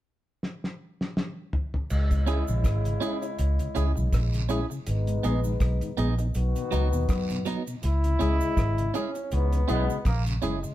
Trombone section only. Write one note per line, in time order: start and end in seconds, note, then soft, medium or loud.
1.90 4.46 C#3 medium
1.90 4.46 G#3 medium
1.90 4.46 E4 medium
4.86 5.95 G#3 medium
4.86 5.95 B3 medium
4.86 5.95 D#4 medium
6.35 7.44 D#3 medium
6.35 7.44 B3 medium
6.35 7.44 F#4 medium
8.20 8.90 C#3 medium
8.20 8.90 G#3 medium
8.20 8.90 E4 medium
9.31 9.61 G#2 medium
9.31 9.61 E3 medium
9.31 9.61 C#4 medium
9.68 9.98 B2 medium
9.68 9.98 G#3 medium
9.68 9.98 B3 loud